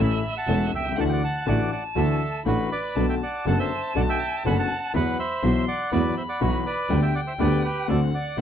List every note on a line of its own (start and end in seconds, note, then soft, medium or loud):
0.00 0.20 A1 loud
0.00 0.20 A1 medium
0.00 0.20 A2 medium
0.00 0.20 E3 medium
0.00 0.20 A3 medium
0.00 0.20 C#4 medium
0.00 0.20 E4 medium
0.00 0.20 A4 medium
0.00 0.98 E5 loud
0.00 0.34 E5 medium
0.00 0.35 B5 medium
0.37 0.71 F#5 medium
0.37 0.72 A5 loud
0.47 0.68 E1 medium
0.47 0.69 E1 medium
0.47 0.69 E2 medium
0.47 0.69 E3 medium
0.47 0.69 A3 medium
0.47 0.69 C#4 medium
0.47 0.69 E4 medium
0.47 0.69 A4 medium
0.73 0.97 C2 medium
0.73 0.97 E5 medium
0.73 0.99 G5 medium
0.80 0.86 B1 soft
0.86 0.91 C2 medium
0.92 0.98 C#2 medium
0.97 1.18 D2 medium
0.97 1.18 D3 medium
0.97 1.18 E3 medium
0.97 1.18 A3 medium
0.97 1.18 D4 medium
0.97 1.18 E4 medium
0.97 1.18 F#4 medium
0.97 1.45 F#5 medium
0.97 1.03 F#5 medium
0.97 1.04 A5 medium
1.09 1.23 D5 medium
1.09 1.11 G5 medium
1.13 1.22 F#5 medium
1.24 1.46 F#5 medium
1.24 1.49 A5 medium
1.46 1.67 A1 medium
1.46 1.68 A2 medium
1.46 1.67 E3 medium
1.46 1.67 A3 medium
1.46 1.67 D4 medium
1.46 1.68 D4 medium
1.46 1.67 E4 medium
1.46 1.67 F#4 medium
1.46 1.68 F#4 medium
1.46 1.70 D5 medium
1.46 1.71 F#5 medium
1.46 2.41 A5 loud
1.72 1.83 D5 medium
1.72 1.84 F#5 medium
1.96 2.17 D2 medium
1.96 2.17 D3 medium
1.96 2.17 E3 medium
1.96 2.17 A3 medium
1.96 2.17 D4 medium
1.96 2.17 E4 medium
1.96 2.17 F#4 medium
1.96 2.43 A4 medium
1.96 2.43 E5 medium
2.46 2.67 A1 medium
2.46 2.67 A2 medium
2.46 2.67 E3 medium
2.46 2.67 A3 medium
2.46 2.67 D4 medium
2.46 2.67 E4 medium
2.46 2.67 F#4 medium
2.46 2.70 F#4 medium
2.46 2.70 B4 medium
2.46 2.97 B5 medium
2.72 3.06 B4 medium
2.72 3.06 D5 medium
2.96 3.17 B1 medium
2.96 3.17 B2 medium
2.96 3.17 D3 medium
2.96 3.17 A3 medium
2.96 3.17 B3 medium
2.96 3.17 D4 medium
2.96 3.17 F#4 medium
2.96 3.17 A4 medium
2.96 4.95 A5 loud
3.09 3.15 E5 medium
3.09 3.15 G5 medium
3.23 3.45 D5 medium
3.23 3.45 F#5 medium
3.46 3.67 F#1 medium
3.46 3.67 F#2 medium
3.46 3.67 D3 medium
3.46 3.67 A3 medium
3.46 3.67 B3 medium
3.46 3.67 D4 medium
3.46 3.67 F#4 medium
3.46 3.67 A4 medium
3.46 3.58 F#5 medium
3.46 3.58 A5 medium
3.59 3.93 C5 medium
3.59 3.93 E5 medium
3.95 4.16 B1 loud
3.95 4.16 B1 medium
3.95 4.16 B2 medium
3.95 4.16 D3 medium
3.95 4.16 A3 medium
3.95 4.16 B3 medium
3.95 4.16 D4 medium
3.95 4.17 F#4 medium
3.95 4.16 A4 medium
3.95 4.02 D5 medium
3.95 4.02 F#5 medium
4.09 4.43 E5 medium
4.09 4.43 G5 medium
4.44 4.66 F#1 medium
4.44 4.66 F#2 medium
4.44 4.66 D3 medium
4.44 4.66 A3 medium
4.44 4.65 B3 medium
4.44 4.66 B3 medium
4.44 4.65 D4 medium
4.44 4.66 F#4 medium
4.44 4.65 A4 medium
4.44 4.57 F#5 medium
4.44 4.57 B5 medium
4.59 4.92 F#5 medium
4.59 4.92 A5 medium
4.94 5.15 E2 medium
4.94 5.15 E3 medium
4.94 5.14 F#3 medium
4.94 5.14 B3 medium
4.94 5.15 B3 medium
4.94 5.14 E4 medium
4.94 5.15 F#4 medium
4.94 5.18 B4 medium
4.94 5.18 F#5 medium
4.94 5.44 B5 loud
5.19 5.65 C5 medium
5.19 5.65 E5 medium
5.43 5.64 B1 medium
5.43 5.64 B2 medium
5.43 5.64 E3 medium
5.43 5.64 F#3 medium
5.43 5.64 B3 medium
5.43 5.64 E4 medium
5.43 5.64 F#4 medium
5.43 5.92 C6 loud
5.68 5.91 D5 medium
5.68 5.93 F#5 medium
5.92 6.13 E2 medium
5.92 6.12 E3 medium
5.92 6.13 F#3 medium
5.92 6.13 B3 medium
5.92 6.13 E4 medium
5.92 6.13 F#4 medium
5.92 6.15 B4 medium
5.92 6.15 D5 medium
5.92 6.91 B5 loud
6.17 6.22 C5 medium
6.17 6.23 E5 medium
6.29 6.40 D5 medium
6.29 6.40 F#5 medium
6.41 6.62 B1 medium
6.41 6.62 B2 medium
6.41 6.61 E3 medium
6.41 6.62 F#3 medium
6.41 6.62 B3 medium
6.41 6.62 E4 medium
6.41 6.64 F#4 medium
6.41 6.62 F#4 medium
6.41 6.64 B4 medium
6.66 7.00 B4 medium
6.66 7.04 D5 medium
6.89 7.10 D2 medium
6.89 7.11 D2 medium
6.89 7.11 D3 medium
6.89 7.11 G3 medium
6.89 7.11 B3 medium
6.89 7.11 D4 medium
6.89 7.11 G4 medium
6.89 7.90 G5 loud
7.02 7.14 E5 medium
7.02 7.15 G5 medium
7.15 7.21 D5 medium
7.15 7.21 F#5 medium
7.27 7.33 C5 medium
7.27 7.33 E5 medium
7.39 7.60 D2 loud
7.39 7.60 D2 medium
7.39 7.60 D3 medium
7.39 7.60 G3 medium
7.39 7.60 B3 medium
7.39 7.60 D4 medium
7.39 7.60 G4 medium
7.39 7.63 B4 medium
7.39 7.63 D5 medium
7.64 7.87 G4 medium
7.64 7.89 B4 medium
7.88 8.09 D2 medium
7.88 8.09 D2 loud
7.88 8.09 D3 medium
7.88 8.09 A3 medium
7.88 8.09 C4 medium
7.88 8.09 D4 medium
7.88 8.09 F#4 medium
7.88 8.00 A4 medium
7.88 8.00 D5 medium
7.88 8.41 F#5 loud
8.15 8.37 D5 medium
8.15 8.37 F#5 medium
8.38 8.41 A1 medium
8.38 8.41 D3 medium
8.38 8.41 A3 medium
8.38 8.41 C4 medium
8.38 8.41 D4 medium
8.38 8.41 F#4 medium